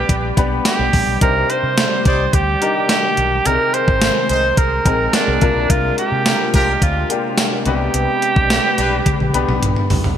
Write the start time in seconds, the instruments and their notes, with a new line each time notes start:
Already playing: analog synth pad C3 G3 G4 B4 D5, grand piano C3 B3 D4 B4, alto saxophone G4
0.09 fingered electric bass A#1, kick, closed hi-hat
0.37 fingered electric bass B1, grand piano B3 D4 G4 B4, kick, closed hi-hat
0.65 alto saxophone G4, snare, closed hi-hat, tambourine
0.79 fingered electric bass B1
0.93 fingered electric bass A#1, kick, open hi-hat
1.07 fingered electric bass B1
1.21 fingered electric bass C2, grand piano C3 D4 D#4 G4 C5, analog synth pad C3 D#3 D5, alto saxophone A#4, kick, closed hi-hat
1.50 alto saxophone C5, closed hi-hat
1.63 fingered electric bass C3
1.77 snare, closed hi-hat, tambourine
2.05 fingered electric bass C2, horn section G3 D#4 D5, alto saxophone C5, kick, closed hi-hat
2.33 fingered electric bass D2, alto saxophone G4, kick, closed hi-hat
2.61 grand piano D4 D#4 G4 A#4, closed hi-hat
2.89 alto saxophone G4, snare, closed hi-hat, tambourine
3.17 fingered electric bass B1, closed hi-hat
3.45 fingered electric bass C2, grand piano C3 C4 D#4 G#4 A#4, analog synth pad G#3 G#4 A#4, alto saxophone A#4, closed hi-hat
3.74 alto saxophone C5, closed hi-hat
3.88 fingered electric bass G#1, kick
4.01 snare, closed hi-hat, tambourine
4.29 fingered electric bass C2, horn section G#3 D#4 C5, alto saxophone C5, closed hi-hat
4.57 fingered electric bass C2, alto saxophone A#4, kick, closed hi-hat
4.85 fingered electric bass A#1, grand piano C4 D#4 G#4 A#4, kick, closed hi-hat
5.13 alto saxophone D4, snare, closed hi-hat, tambourine
5.28 fingered electric bass C2
5.41 fingered electric bass C2, grand piano C3 A#3 D4 F4 A#4, analog synth pad D4 F4, kick, closed hi-hat
5.56 fingered electric bass B1
5.70 fingered electric bass C2, alto saxophone F4, kick, closed hi-hat
5.98 alto saxophone G4, closed hi-hat
6.12 fingered electric bass C3
6.26 snare, closed hi-hat, tambourine
6.54 fingered electric bass C2, horn section F3 D4 A#4, alto saxophone G4, kick, closed hi-hat
6.82 fingered electric bass D2, alto saxophone F4, kick, closed hi-hat
7.10 grand piano A#3 D4 F4 G4, closed hi-hat
7.38 snare, closed hi-hat, tambourine
7.66 fingered electric bass C2, grand piano C3 B3 D4 G4 B4, analog synth pad G4 B4, alto saxophone G4, closed hi-hat
7.94 fingered electric bass C2, closed hi-hat
8.22 closed hi-hat
8.36 fingered electric bass B1, kick
8.50 snare, closed hi-hat, tambourine
8.78 fingered electric bass B1, horn section G3 D4 B4, closed hi-hat
9.06 kick, closed hi-hat, high tom
9.20 fingered electric bass A#1, high tom
9.34 fingered electric bass B1, grand piano B3 D4 G4 B4, closed hi-hat
9.48 fingered electric bass B1, mid tom
9.62 fingered electric bass A#1, closed hi-hat, mid tom
9.76 mid tom
9.90 fingered electric bass B1, floor tom, open hi-hat
10.04 fingered electric bass B1, floor tom